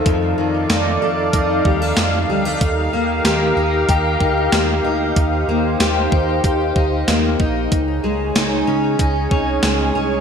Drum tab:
HH |x-x-x-x-|x-x-x-x-|x-x-x-x-|x-x-x-x-|
SD |--o---o-|--o---o-|--o---o-|--o---o-|
BD |o---oo--|o---oo--|o--ooo-o|o---oo--|